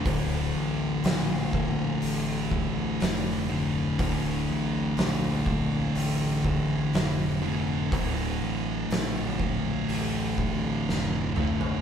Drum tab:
HH |o---o---o---o---|o---o---o---o---|o---o---o-------|
SD |----o-------o---|----o-------o---|----o-------o---|
T2 |----------------|----------------|--------------o-|
FT |----------------|----------------|---------------o|
BD |o-----o---o-----|o-----o---o-----|o-----o---o-----|